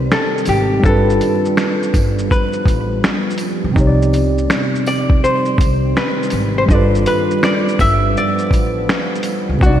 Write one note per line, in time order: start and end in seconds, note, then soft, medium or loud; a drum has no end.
0.00 0.77 C3 medium
0.00 0.81 D#3 medium
0.00 9.80 G3 medium
0.00 0.79 C4 medium
0.00 0.81 C4 medium
0.00 0.83 D#4 medium
0.00 0.81 G4 medium
0.00 0.14 B4 loud
0.00 0.82 D5 medium
0.11 0.48 A4 medium
0.11 finger snap medium
0.11 snare loud
0.11 shaker medium
0.38 shaker soft
0.45 0.82 G#1 medium
0.45 0.82 G4 medium
0.45 closed hi-hat medium
0.45 tambourine medium
0.45 shaker soft
0.80 3.73 F3 medium
0.80 3.70 G3 medium
0.80 3.73 B3 medium
0.80 3.71 D4 medium
0.80 kick loud
0.84 1.18 G1 loud
0.84 3.73 F4 medium
0.84 2.35 A4 medium
0.84 3.74 A4 medium
0.84 shaker medium
0.89 3.75 B4 medium
1.10 shaker soft
1.21 closed hi-hat medium
1.21 tambourine soft
1.21 shaker soft
1.45 shaker soft
1.57 finger snap loud
1.57 snare loud
1.57 shaker medium
1.83 shaker soft
1.94 2.28 G1 medium
1.94 kick medium
1.94 closed hi-hat medium
1.94 tambourine medium
1.94 shaker soft
2.19 shaker medium
2.31 3.00 B4 medium
2.31 kick medium
2.31 shaker medium
2.53 shaker soft
2.65 3.01 A1 medium
2.65 kick loud
2.65 closed hi-hat medium
2.65 tambourine soft
2.65 shaker soft
3.04 finger snap medium
3.04 snare loud
3.04 shaker medium
3.30 shaker soft
3.38 closed hi-hat medium
3.38 tambourine medium
3.38 shaker soft
3.64 3.76 C#2 medium
3.71 6.62 C3 medium
3.71 6.64 C4 medium
3.76 4.45 C2 loud
3.76 6.66 D#3 medium
3.76 6.66 C4 medium
3.76 6.65 D#4 medium
3.76 6.66 G4 medium
3.76 kick loud
3.76 shaker medium
3.80 3.87 C#5 medium
3.87 6.70 D5 medium
4.02 shaker soft
4.13 closed hi-hat medium
4.13 tambourine medium
4.13 shaker soft
4.38 shaker soft
4.50 finger snap loud
4.50 snare loud
4.50 shaker medium
4.76 shaker soft
4.86 5.23 D5 medium
4.86 closed hi-hat medium
4.86 tambourine medium
4.86 shaker soft
5.10 5.22 D2 medium
5.10 kick medium
5.24 5.96 C5 medium
5.24 shaker medium
5.45 shaker soft
5.58 5.93 C2 medium
5.58 kick medium
5.58 closed hi-hat medium
5.58 tambourine soft
5.58 shaker soft
5.97 6.53 B4 medium
5.97 finger snap medium
5.97 snare loud
5.97 shaker medium
6.23 shaker soft
6.30 6.67 G#1 medium
6.30 closed hi-hat medium
6.30 tambourine medium
6.30 shaker soft
6.58 6.63 C5 medium
6.66 7.04 G1 loud
6.66 9.59 F3 medium
6.66 9.56 G3 medium
6.66 9.59 B3 medium
6.66 9.57 D4 medium
6.66 kick loud
6.70 9.58 F4 medium
6.70 9.60 A4 medium
6.70 7.07 D5 loud
6.70 shaker medium
6.75 9.61 B4 medium
6.95 shaker soft
7.06 7.44 B4 medium
7.06 closed hi-hat medium
7.06 tambourine soft
7.06 shaker soft
7.31 shaker soft
7.43 7.80 D5 loud
7.43 finger snap loud
7.43 snare loud
7.43 shaker medium
7.68 shaker soft
7.79 8.14 G1 loud
7.79 8.17 E5 loud
7.79 kick medium
7.79 closed hi-hat medium
7.79 tambourine medium
7.79 shaker soft
8.17 9.22 D5 medium
8.17 shaker medium
8.38 shaker soft
8.51 8.86 A1 medium
8.51 kick medium
8.51 closed hi-hat medium
8.51 tambourine soft
8.51 shaker soft
8.89 finger snap loud
8.89 snare loud
8.89 shaker medium
9.15 shaker medium
9.23 closed hi-hat medium
9.23 tambourine medium
9.23 shaker medium
9.49 9.61 C#2 medium
9.57 9.80 C3 medium
9.57 9.80 C4 medium
9.61 9.80 C2 loud
9.61 9.80 D#3 medium
9.61 9.80 G3 medium
9.61 9.80 C4 medium
9.61 9.70 D4 soft
9.61 9.80 F#4 medium
9.61 9.80 D5 medium
9.61 kick loud
9.61 shaker medium
9.66 9.80 D#4 medium
9.66 9.80 D5 medium